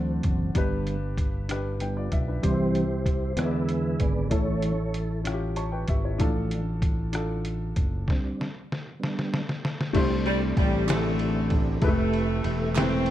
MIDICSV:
0, 0, Header, 1, 6, 480
1, 0, Start_track
1, 0, Key_signature, 0, "major"
1, 0, Tempo, 625652
1, 423, Time_signature, 6, 3, 24, 8
1, 10054, End_track
2, 0, Start_track
2, 0, Title_t, "Upright piano"
2, 0, Program_c, 0, 0
2, 0, Control_c, 0, 64, 127
2, 0, Note_on_c, 0, 50, 60
2, 0, Note_on_c, 0, 60, 63
2, 0, Note_on_c, 0, 62, 58
2, 0, Note_on_c, 0, 66, 57
2, 0, Note_on_c, 0, 69, 57
2, 0, Note_on_c, 0, 74, 67
2, 349, Note_off_c, 0, 60, 0
2, 352, Note_off_c, 0, 62, 0
2, 355, Note_off_c, 0, 66, 0
2, 357, Note_off_c, 0, 69, 0
2, 361, Note_off_c, 0, 74, 0
2, 397, Note_off_c, 0, 50, 0
2, 420, Note_on_c, 0, 62, 80
2, 431, Note_on_c, 0, 43, 61
2, 432, Note_on_c, 0, 67, 72
2, 434, Control_c, 0, 64, 0
2, 443, Note_on_c, 0, 71, 88
2, 587, Control_c, 0, 64, 127
2, 1072, Note_off_c, 0, 62, 0
2, 1078, Note_off_c, 0, 67, 0
2, 1083, Note_off_c, 0, 71, 0
2, 1119, Note_off_c, 0, 43, 0
2, 1141, Note_on_c, 0, 62, 60
2, 1153, Note_on_c, 0, 67, 56
2, 1164, Note_on_c, 0, 71, 67
2, 1382, Note_off_c, 0, 71, 0
2, 1384, Note_off_c, 0, 62, 0
2, 1390, Note_off_c, 0, 67, 0
2, 1391, Note_on_c, 0, 79, 55
2, 1393, Note_on_c, 0, 71, 48
2, 1397, Note_on_c, 0, 62, 38
2, 1505, Note_off_c, 0, 71, 0
2, 1507, Note_off_c, 0, 62, 0
2, 1510, Note_on_c, 0, 74, 55
2, 1517, Note_on_c, 0, 65, 46
2, 1613, Note_off_c, 0, 79, 0
2, 1633, Note_on_c, 0, 76, 57
2, 1737, Note_off_c, 0, 74, 0
2, 1741, Note_off_c, 0, 65, 0
2, 1751, Note_on_c, 0, 71, 48
2, 1755, Note_on_c, 0, 62, 44
2, 1848, Note_off_c, 0, 62, 0
2, 1854, Note_off_c, 0, 76, 0
2, 1860, Note_on_c, 0, 62, 51
2, 1867, Note_on_c, 0, 67, 60
2, 1869, Note_on_c, 0, 48, 51
2, 1878, Control_c, 0, 64, 0
2, 1879, Note_on_c, 0, 72, 70
2, 1905, Note_on_c, 0, 64, 66
2, 1914, Note_off_c, 0, 62, 0
2, 1978, Note_off_c, 0, 71, 0
2, 1989, Control_c, 0, 64, 127
2, 2517, Note_off_c, 0, 67, 0
2, 2523, Note_off_c, 0, 72, 0
2, 2536, Note_off_c, 0, 64, 0
2, 2560, Note_off_c, 0, 48, 0
2, 2584, Note_on_c, 0, 59, 50
2, 2590, Note_on_c, 0, 62, 44
2, 2594, Note_on_c, 0, 64, 46
2, 2597, Note_on_c, 0, 52, 49
2, 2598, Note_on_c, 0, 68, 47
2, 2601, Control_c, 0, 64, 0
2, 2605, Note_on_c, 0, 73, 47
2, 2648, Note_off_c, 0, 73, 0
2, 2653, Note_on_c, 0, 74, 55
2, 2715, Control_c, 0, 64, 127
2, 3237, Note_off_c, 0, 59, 0
2, 3239, Note_off_c, 0, 62, 0
2, 3241, Note_off_c, 0, 64, 0
2, 3243, Note_off_c, 0, 68, 0
2, 3271, Note_off_c, 0, 74, 0
2, 3285, Note_off_c, 0, 52, 0
2, 3295, Note_on_c, 0, 61, 61
2, 3305, Note_on_c, 0, 64, 59
2, 3307, Note_on_c, 0, 45, 54
2, 3315, Note_on_c, 0, 69, 73
2, 3321, Control_c, 0, 64, 0
2, 3481, Control_c, 0, 64, 127
2, 3953, Note_off_c, 0, 61, 0
2, 3958, Note_off_c, 0, 64, 0
2, 3963, Note_off_c, 0, 69, 0
2, 4001, Note_off_c, 0, 45, 0
2, 4021, Note_on_c, 0, 61, 62
2, 4030, Note_on_c, 0, 64, 58
2, 4041, Note_on_c, 0, 65, 58
2, 4087, Note_off_c, 0, 65, 0
2, 4092, Note_on_c, 0, 67, 69
2, 4269, Note_on_c, 0, 81, 51
2, 4270, Note_on_c, 0, 73, 42
2, 4271, Note_on_c, 0, 85, 53
2, 4272, Note_off_c, 0, 64, 0
2, 4303, Note_off_c, 0, 67, 0
2, 4386, Note_off_c, 0, 73, 0
2, 4386, Note_off_c, 0, 81, 0
2, 4389, Note_on_c, 0, 79, 57
2, 4395, Note_on_c, 0, 71, 48
2, 4496, Note_off_c, 0, 85, 0
2, 4506, Note_off_c, 0, 79, 0
2, 4509, Note_off_c, 0, 71, 0
2, 4520, Note_on_c, 0, 76, 60
2, 4526, Note_on_c, 0, 67, 47
2, 4632, Note_off_c, 0, 76, 0
2, 4634, Note_off_c, 0, 67, 0
2, 4640, Note_on_c, 0, 73, 52
2, 4647, Note_on_c, 0, 64, 43
2, 4676, Note_off_c, 0, 61, 0
2, 4744, Note_on_c, 0, 62, 77
2, 4754, Note_on_c, 0, 65, 70
2, 4758, Note_on_c, 0, 45, 62
2, 4763, Control_c, 0, 64, 0
2, 4763, Note_on_c, 0, 69, 87
2, 4866, Note_off_c, 0, 73, 0
2, 4870, Note_off_c, 0, 64, 0
2, 4903, Control_c, 0, 64, 127
2, 5398, Note_off_c, 0, 62, 0
2, 5403, Note_off_c, 0, 65, 0
2, 5408, Note_off_c, 0, 69, 0
2, 5447, Note_off_c, 0, 45, 0
2, 5467, Note_on_c, 0, 62, 65
2, 5477, Note_on_c, 0, 65, 57
2, 5487, Note_on_c, 0, 69, 72
2, 6119, Note_off_c, 0, 62, 0
2, 6124, Note_off_c, 0, 65, 0
2, 6129, Note_off_c, 0, 69, 0
2, 6206, Control_c, 0, 64, 0
2, 7620, Note_on_c, 0, 57, 94
2, 7633, Note_on_c, 0, 48, 72
2, 7633, Note_on_c, 0, 62, 89
2, 7634, Note_on_c, 0, 64, 86
2, 7639, Note_on_c, 0, 67, 89
2, 7645, Note_on_c, 0, 72, 108
2, 7777, Control_c, 0, 64, 127
2, 8273, Note_off_c, 0, 57, 0
2, 8279, Note_off_c, 0, 62, 0
2, 8280, Note_off_c, 0, 64, 0
2, 8283, Note_off_c, 0, 67, 0
2, 8286, Note_off_c, 0, 72, 0
2, 8321, Note_off_c, 0, 48, 0
2, 8340, Note_on_c, 0, 57, 62
2, 8346, Note_on_c, 0, 62, 59
2, 8350, Note_on_c, 0, 64, 58
2, 8357, Note_on_c, 0, 67, 58
2, 8357, Note_on_c, 0, 68, 60
2, 8404, Note_off_c, 0, 68, 0
2, 8412, Note_on_c, 0, 69, 73
2, 8992, Note_off_c, 0, 57, 0
2, 8995, Note_off_c, 0, 62, 0
2, 8997, Note_off_c, 0, 64, 0
2, 9000, Note_off_c, 0, 67, 0
2, 9027, Note_off_c, 0, 69, 0
2, 9057, Note_on_c, 0, 56, 67
2, 9063, Note_on_c, 0, 64, 77
2, 9069, Note_on_c, 0, 69, 76
2, 9075, Note_on_c, 0, 67, 71
2, 9079, Control_c, 0, 64, 0
2, 9080, Note_on_c, 0, 71, 92
2, 9112, Note_on_c, 0, 57, 81
2, 9113, Note_off_c, 0, 56, 0
2, 9204, Control_c, 0, 64, 127
2, 9711, Note_off_c, 0, 64, 0
2, 9714, Note_off_c, 0, 69, 0
2, 9717, Note_off_c, 0, 67, 0
2, 9720, Note_off_c, 0, 71, 0
2, 9736, Note_off_c, 0, 57, 0
2, 9779, Note_on_c, 0, 56, 54
2, 9786, Note_on_c, 0, 64, 62
2, 9792, Note_on_c, 0, 69, 61
2, 9798, Note_on_c, 0, 67, 58
2, 9801, Note_on_c, 0, 71, 73
2, 9831, Note_on_c, 0, 57, 67
2, 9833, Note_off_c, 0, 56, 0
2, 10054, Note_off_c, 0, 57, 0
2, 10054, Note_off_c, 0, 64, 0
2, 10054, Note_off_c, 0, 67, 0
2, 10054, Note_off_c, 0, 69, 0
2, 10054, Note_off_c, 0, 71, 0
2, 10054, End_track
3, 0, Start_track
3, 0, Title_t, "Tonewheel organ"
3, 0, Program_c, 1, 16
3, 0, Note_on_c, 1, 52, 43
3, 0, Note_on_c, 1, 54, 41
3, 0, Note_on_c, 1, 60, 51
3, 387, Note_off_c, 1, 54, 0
3, 389, Note_off_c, 1, 52, 0
3, 391, Note_off_c, 1, 60, 0
3, 416, Note_on_c, 1, 50, 46
3, 420, Note_on_c, 1, 59, 47
3, 421, Note_on_c, 1, 55, 42
3, 740, Note_off_c, 1, 50, 0
3, 742, Note_off_c, 1, 55, 0
3, 742, Note_off_c, 1, 59, 0
3, 1375, Note_on_c, 1, 50, 40
3, 1385, Note_on_c, 1, 55, 36
3, 1388, Note_on_c, 1, 59, 44
3, 1597, Note_off_c, 1, 50, 0
3, 1603, Note_off_c, 1, 55, 0
3, 1604, Note_off_c, 1, 59, 0
3, 1848, Note_on_c, 1, 52, 43
3, 1855, Note_on_c, 1, 55, 39
3, 1857, Note_on_c, 1, 64, 50
3, 1858, Note_on_c, 1, 67, 49
3, 1860, Note_on_c, 1, 60, 50
3, 1874, Note_on_c, 1, 72, 69
3, 2178, Note_off_c, 1, 52, 0
3, 2181, Note_off_c, 1, 55, 0
3, 2184, Note_off_c, 1, 60, 0
3, 2554, Note_off_c, 1, 64, 0
3, 2554, Note_off_c, 1, 67, 0
3, 2582, Note_on_c, 1, 50, 43
3, 2589, Note_on_c, 1, 56, 39
3, 2592, Note_on_c, 1, 68, 61
3, 2592, Note_on_c, 1, 71, 57
3, 2593, Note_on_c, 1, 59, 47
3, 2598, Note_on_c, 1, 76, 78
3, 2615, Note_off_c, 1, 72, 0
3, 3069, Note_on_c, 1, 74, 74
3, 3090, Note_off_c, 1, 76, 0
3, 3277, Note_off_c, 1, 50, 0
3, 3281, Note_off_c, 1, 56, 0
3, 3282, Note_off_c, 1, 68, 0
3, 3282, Note_off_c, 1, 71, 0
3, 3283, Note_off_c, 1, 59, 0
3, 3300, Note_on_c, 1, 57, 44
3, 3304, Note_on_c, 1, 52, 43
3, 3305, Note_on_c, 1, 64, 47
3, 3307, Note_on_c, 1, 61, 48
3, 3307, Note_on_c, 1, 69, 49
3, 3307, Note_on_c, 1, 73, 66
3, 3318, Note_off_c, 1, 74, 0
3, 3625, Note_off_c, 1, 57, 0
3, 3628, Note_off_c, 1, 52, 0
3, 3629, Note_off_c, 1, 61, 0
3, 3820, Note_off_c, 1, 73, 0
3, 3999, Note_off_c, 1, 64, 0
3, 4001, Note_off_c, 1, 69, 0
3, 4757, Note_on_c, 1, 53, 47
3, 4763, Note_on_c, 1, 57, 41
3, 4764, Note_on_c, 1, 62, 53
3, 5075, Note_off_c, 1, 53, 0
3, 5079, Note_off_c, 1, 57, 0
3, 5079, Note_off_c, 1, 62, 0
3, 6194, Note_on_c, 1, 55, 44
3, 6195, Note_on_c, 1, 62, 48
3, 6198, Note_on_c, 1, 60, 42
3, 6514, Note_off_c, 1, 55, 0
3, 6514, Note_off_c, 1, 62, 0
3, 6516, Note_off_c, 1, 60, 0
3, 6902, Note_on_c, 1, 55, 44
3, 6904, Note_on_c, 1, 59, 42
3, 6908, Note_on_c, 1, 62, 50
3, 7227, Note_off_c, 1, 55, 0
3, 7228, Note_off_c, 1, 59, 0
3, 7230, Note_off_c, 1, 62, 0
3, 7628, Note_on_c, 1, 74, 85
3, 7632, Note_on_c, 1, 67, 68
3, 7632, Note_on_c, 1, 69, 71
3, 7633, Note_on_c, 1, 60, 82
3, 7634, Note_on_c, 1, 64, 69
3, 9038, Note_off_c, 1, 74, 0
3, 9040, Note_off_c, 1, 60, 0
3, 9040, Note_off_c, 1, 67, 0
3, 9040, Note_off_c, 1, 69, 0
3, 9041, Note_off_c, 1, 64, 0
3, 9069, Note_on_c, 1, 67, 62
3, 9069, Note_on_c, 1, 69, 60
3, 9069, Note_on_c, 1, 76, 74
3, 9072, Note_on_c, 1, 64, 62
3, 9072, Note_on_c, 1, 71, 69
3, 10054, Note_off_c, 1, 64, 0
3, 10054, Note_off_c, 1, 67, 0
3, 10054, Note_off_c, 1, 69, 0
3, 10054, Note_off_c, 1, 71, 0
3, 10054, Note_off_c, 1, 76, 0
3, 10054, End_track
4, 0, Start_track
4, 0, Title_t, "Saxophone section"
4, 0, Program_c, 2, 65
4, 7873, Note_on_c, 2, 55, 92
4, 7981, Note_off_c, 2, 55, 0
4, 8119, Note_on_c, 2, 55, 92
4, 8339, Note_off_c, 2, 55, 0
4, 8366, Note_on_c, 2, 50, 70
4, 8367, Note_on_c, 2, 52, 73
4, 8369, Note_on_c, 2, 57, 100
4, 8839, Note_off_c, 2, 57, 0
4, 9046, Note_off_c, 2, 50, 0
4, 9047, Note_off_c, 2, 52, 0
4, 9082, Note_on_c, 2, 52, 69
4, 9084, Note_on_c, 2, 48, 68
4, 9084, Note_on_c, 2, 57, 98
4, 9762, Note_off_c, 2, 52, 0
4, 9763, Note_off_c, 2, 48, 0
4, 9763, Note_off_c, 2, 57, 0
4, 9798, Note_on_c, 2, 57, 83
4, 9799, Note_on_c, 2, 60, 112
4, 9801, Note_on_c, 2, 52, 78
4, 10054, Note_off_c, 2, 52, 0
4, 10054, Note_off_c, 2, 57, 0
4, 10054, Note_off_c, 2, 60, 0
4, 10054, End_track
5, 0, Start_track
5, 0, Title_t, "Fingered electric bass"
5, 0, Program_c, 3, 33
5, 0, Note_on_c, 3, 38, 88
5, 149, Note_off_c, 3, 38, 0
5, 185, Note_on_c, 3, 30, 75
5, 406, Note_off_c, 3, 30, 0
5, 423, Note_on_c, 3, 31, 80
5, 1597, Note_off_c, 3, 31, 0
5, 1627, Note_on_c, 3, 35, 66
5, 1849, Note_off_c, 3, 35, 0
5, 1867, Note_on_c, 3, 36, 68
5, 2559, Note_off_c, 3, 36, 0
5, 2582, Note_on_c, 3, 40, 89
5, 3037, Note_off_c, 3, 40, 0
5, 3070, Note_on_c, 3, 32, 74
5, 3292, Note_off_c, 3, 32, 0
5, 3306, Note_on_c, 3, 33, 79
5, 4481, Note_off_c, 3, 33, 0
5, 4513, Note_on_c, 3, 32, 64
5, 4735, Note_off_c, 3, 32, 0
5, 4754, Note_on_c, 3, 33, 77
5, 5924, Note_off_c, 3, 33, 0
5, 5957, Note_on_c, 3, 30, 71
5, 6177, Note_off_c, 3, 30, 0
5, 7632, Note_on_c, 3, 36, 93
5, 8081, Note_off_c, 3, 36, 0
5, 8109, Note_on_c, 3, 33, 92
5, 9037, Note_off_c, 3, 33, 0
5, 9068, Note_on_c, 3, 29, 100
5, 9516, Note_off_c, 3, 29, 0
5, 9550, Note_on_c, 3, 28, 98
5, 10054, Note_off_c, 3, 28, 0
5, 10054, End_track
6, 0, Start_track
6, 0, Title_t, "Drums"
6, 179, Note_on_c, 9, 42, 47
6, 184, Note_on_c, 9, 36, 73
6, 256, Note_off_c, 9, 42, 0
6, 261, Note_off_c, 9, 36, 0
6, 422, Note_on_c, 9, 42, 75
6, 423, Note_on_c, 9, 36, 81
6, 499, Note_off_c, 9, 42, 0
6, 500, Note_off_c, 9, 36, 0
6, 665, Note_on_c, 9, 42, 38
6, 742, Note_off_c, 9, 42, 0
6, 902, Note_on_c, 9, 36, 69
6, 905, Note_on_c, 9, 42, 50
6, 978, Note_off_c, 9, 36, 0
6, 982, Note_off_c, 9, 42, 0
6, 1145, Note_on_c, 9, 42, 78
6, 1160, Note_on_c, 9, 37, 76
6, 1221, Note_off_c, 9, 42, 0
6, 1236, Note_off_c, 9, 37, 0
6, 1383, Note_on_c, 9, 42, 46
6, 1460, Note_off_c, 9, 42, 0
6, 1625, Note_on_c, 9, 42, 49
6, 1628, Note_on_c, 9, 36, 68
6, 1702, Note_off_c, 9, 42, 0
6, 1704, Note_off_c, 9, 36, 0
6, 1866, Note_on_c, 9, 36, 86
6, 1868, Note_on_c, 9, 42, 71
6, 1943, Note_off_c, 9, 36, 0
6, 1944, Note_off_c, 9, 42, 0
6, 2110, Note_on_c, 9, 42, 38
6, 2186, Note_off_c, 9, 42, 0
6, 2345, Note_on_c, 9, 36, 70
6, 2350, Note_on_c, 9, 42, 51
6, 2421, Note_off_c, 9, 36, 0
6, 2427, Note_off_c, 9, 42, 0
6, 2584, Note_on_c, 9, 42, 72
6, 2599, Note_on_c, 9, 37, 82
6, 2661, Note_off_c, 9, 42, 0
6, 2676, Note_off_c, 9, 37, 0
6, 2828, Note_on_c, 9, 42, 46
6, 2905, Note_off_c, 9, 42, 0
6, 3067, Note_on_c, 9, 42, 51
6, 3070, Note_on_c, 9, 36, 70
6, 3143, Note_off_c, 9, 42, 0
6, 3146, Note_off_c, 9, 36, 0
6, 3307, Note_on_c, 9, 42, 69
6, 3309, Note_on_c, 9, 36, 82
6, 3383, Note_off_c, 9, 42, 0
6, 3386, Note_off_c, 9, 36, 0
6, 3548, Note_on_c, 9, 42, 41
6, 3624, Note_off_c, 9, 42, 0
6, 3792, Note_on_c, 9, 42, 49
6, 3868, Note_off_c, 9, 42, 0
6, 4030, Note_on_c, 9, 42, 77
6, 4044, Note_on_c, 9, 37, 80
6, 4106, Note_off_c, 9, 42, 0
6, 4121, Note_off_c, 9, 37, 0
6, 4267, Note_on_c, 9, 42, 48
6, 4344, Note_off_c, 9, 42, 0
6, 4508, Note_on_c, 9, 42, 51
6, 4514, Note_on_c, 9, 36, 72
6, 4585, Note_off_c, 9, 42, 0
6, 4591, Note_off_c, 9, 36, 0
6, 4754, Note_on_c, 9, 36, 89
6, 4754, Note_on_c, 9, 42, 70
6, 4831, Note_off_c, 9, 36, 0
6, 4831, Note_off_c, 9, 42, 0
6, 4996, Note_on_c, 9, 42, 40
6, 5073, Note_off_c, 9, 42, 0
6, 5232, Note_on_c, 9, 36, 76
6, 5235, Note_on_c, 9, 42, 51
6, 5309, Note_off_c, 9, 36, 0
6, 5312, Note_off_c, 9, 42, 0
6, 5470, Note_on_c, 9, 42, 73
6, 5485, Note_on_c, 9, 37, 84
6, 5547, Note_off_c, 9, 42, 0
6, 5562, Note_off_c, 9, 37, 0
6, 5714, Note_on_c, 9, 42, 47
6, 5791, Note_off_c, 9, 42, 0
6, 5955, Note_on_c, 9, 42, 52
6, 5957, Note_on_c, 9, 36, 72
6, 6032, Note_off_c, 9, 42, 0
6, 6034, Note_off_c, 9, 36, 0
6, 6198, Note_on_c, 9, 36, 83
6, 6214, Note_on_c, 9, 38, 64
6, 6274, Note_off_c, 9, 36, 0
6, 6291, Note_off_c, 9, 38, 0
6, 6453, Note_on_c, 9, 38, 49
6, 6530, Note_off_c, 9, 38, 0
6, 6692, Note_on_c, 9, 38, 62
6, 6769, Note_off_c, 9, 38, 0
6, 6932, Note_on_c, 9, 38, 65
6, 7009, Note_off_c, 9, 38, 0
6, 7049, Note_on_c, 9, 38, 63
6, 7126, Note_off_c, 9, 38, 0
6, 7163, Note_on_c, 9, 38, 77
6, 7240, Note_off_c, 9, 38, 0
6, 7282, Note_on_c, 9, 38, 66
6, 7359, Note_off_c, 9, 38, 0
6, 7402, Note_on_c, 9, 38, 74
6, 7479, Note_off_c, 9, 38, 0
6, 7523, Note_on_c, 9, 38, 72
6, 7600, Note_off_c, 9, 38, 0
6, 7630, Note_on_c, 9, 49, 95
6, 7630, Note_on_c, 9, 51, 73
6, 7632, Note_on_c, 9, 36, 108
6, 7707, Note_off_c, 9, 49, 0
6, 7707, Note_off_c, 9, 51, 0
6, 7709, Note_off_c, 9, 36, 0
6, 7869, Note_on_c, 9, 51, 38
6, 7946, Note_off_c, 9, 51, 0
6, 8108, Note_on_c, 9, 36, 90
6, 8109, Note_on_c, 9, 51, 55
6, 8184, Note_off_c, 9, 36, 0
6, 8185, Note_off_c, 9, 51, 0
6, 8348, Note_on_c, 9, 51, 82
6, 8352, Note_on_c, 9, 39, 94
6, 8363, Note_on_c, 9, 38, 103
6, 8425, Note_off_c, 9, 51, 0
6, 8429, Note_off_c, 9, 39, 0
6, 8440, Note_off_c, 9, 38, 0
6, 8587, Note_on_c, 9, 51, 50
6, 8664, Note_off_c, 9, 51, 0
6, 8824, Note_on_c, 9, 51, 53
6, 8829, Note_on_c, 9, 36, 88
6, 8901, Note_off_c, 9, 51, 0
6, 8906, Note_off_c, 9, 36, 0
6, 9066, Note_on_c, 9, 51, 79
6, 9067, Note_on_c, 9, 36, 102
6, 9142, Note_off_c, 9, 51, 0
6, 9144, Note_off_c, 9, 36, 0
6, 9309, Note_on_c, 9, 51, 42
6, 9386, Note_off_c, 9, 51, 0
6, 9546, Note_on_c, 9, 51, 54
6, 9623, Note_off_c, 9, 51, 0
6, 9785, Note_on_c, 9, 39, 89
6, 9787, Note_on_c, 9, 51, 78
6, 9802, Note_on_c, 9, 38, 98
6, 9862, Note_off_c, 9, 39, 0
6, 9863, Note_off_c, 9, 51, 0
6, 9878, Note_off_c, 9, 38, 0
6, 10020, Note_on_c, 9, 51, 49
6, 10054, Note_off_c, 9, 51, 0
6, 10054, End_track
0, 0, End_of_file